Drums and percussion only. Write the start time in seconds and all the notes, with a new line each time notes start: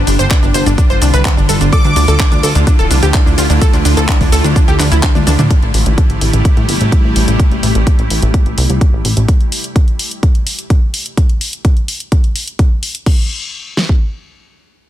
0.07 open hi-hat, cabasa
0.19 closed hi-hat, cabasa
0.31 kick, clap, closed hi-hat, cabasa
0.43 closed hi-hat, cabasa
0.54 open hi-hat, cabasa
0.66 closed hi-hat, cabasa
0.78 kick, closed hi-hat, cabasa
0.90 closed hi-hat, cabasa
1.02 open hi-hat, cabasa
1.14 closed hi-hat, cabasa
1.25 kick, clap, closed hi-hat, cabasa
1.38 cabasa
1.49 open hi-hat, cabasa
1.61 closed hi-hat, cabasa
1.73 kick, closed hi-hat, cabasa
1.85 closed hi-hat, cabasa
1.96 open hi-hat, cabasa
2.08 closed hi-hat, cabasa
2.20 kick, clap, closed hi-hat, cabasa
2.32 closed hi-hat, cabasa
2.43 open hi-hat, cabasa
2.55 closed hi-hat, cabasa
2.67 kick, closed hi-hat, cabasa
2.79 closed hi-hat, cabasa
2.91 open hi-hat, cabasa
3.03 closed hi-hat, cabasa
3.14 kick, clap, closed hi-hat, cabasa
3.27 cabasa
3.38 open hi-hat, cabasa
3.50 closed hi-hat, cabasa
3.62 kick, closed hi-hat, cabasa
3.73 closed hi-hat, cabasa
3.85 open hi-hat, cabasa
3.97 closed hi-hat, cabasa
4.09 kick, clap, closed hi-hat, cabasa
4.21 kick, open hi-hat, cabasa
4.32 open hi-hat, cabasa
4.44 closed hi-hat, cabasa
4.56 kick, closed hi-hat, cabasa
4.68 closed hi-hat, cabasa
4.80 clap, open hi-hat, cabasa
4.92 closed hi-hat, cabasa
5.03 kick, clap, closed hi-hat, cabasa
5.15 closed hi-hat, high tom, cabasa
5.27 open hi-hat, mid tom, cabasa
5.39 closed hi-hat, mid tom, cabasa
5.51 kick, closed hi-hat
5.63 closed hi-hat
5.74 open hi-hat
5.86 closed hi-hat
5.98 kick, closed hi-hat
6.10 closed hi-hat
6.21 open hi-hat
6.33 closed hi-hat
6.45 kick, closed hi-hat
6.57 closed hi-hat
6.69 open hi-hat
6.81 closed hi-hat
6.92 kick, closed hi-hat
7.16 open hi-hat
7.28 closed hi-hat
7.40 kick, closed hi-hat
7.52 closed hi-hat
7.63 open hi-hat
7.75 closed hi-hat
7.87 kick, closed hi-hat
7.99 closed hi-hat
8.10 open hi-hat
8.22 closed hi-hat
8.34 kick, closed hi-hat
8.46 closed hi-hat
8.58 open hi-hat
8.70 closed hi-hat
8.81 kick, closed hi-hat
9.05 open hi-hat
9.17 closed hi-hat
9.29 kick, closed hi-hat
9.41 closed hi-hat
9.52 open hi-hat
9.64 closed hi-hat
9.76 kick, closed hi-hat
9.88 closed hi-hat
9.99 open hi-hat
10.11 closed hi-hat
10.23 kick, closed hi-hat
10.35 closed hi-hat
10.47 open hi-hat
10.59 closed hi-hat
10.70 kick, closed hi-hat
10.94 open hi-hat
11.06 closed hi-hat
11.17 kick, closed hi-hat
11.29 closed hi-hat
11.41 open hi-hat
11.53 closed hi-hat
11.65 kick, closed hi-hat
11.77 closed hi-hat
11.88 open hi-hat
12.00 closed hi-hat
12.12 kick, closed hi-hat
12.24 closed hi-hat
12.36 open hi-hat
12.48 closed hi-hat
12.59 kick, closed hi-hat
12.83 open hi-hat
12.95 closed hi-hat
13.06 kick, crash
13.77 snare
13.89 kick